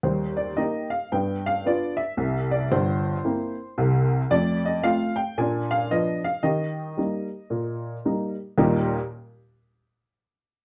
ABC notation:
X:1
M:4/4
L:1/8
Q:"Swing" 1/4=113
K:Eb
V:1 name="Upright piano"
c d e f g f d _f- | _f d c6 | d e f g a f e f | e6 z2 |
[E,,B,,G,B,EG] z6 z |]
V:2 name="Upright piano"
[E,,G,]2 [B,EG]2 [G,,=B,]2 [B,DF]2 | [C,,C,]2 [G,,,G,,]2 [B,C=E]2 [C,,C,]2 | [F,,=A,]2 [A,CF]2 [B,,D]2 [F,_CD]2 | [E,G]2 [G,B,E]2 B,,2 [G,B,E]2 |
z8 |]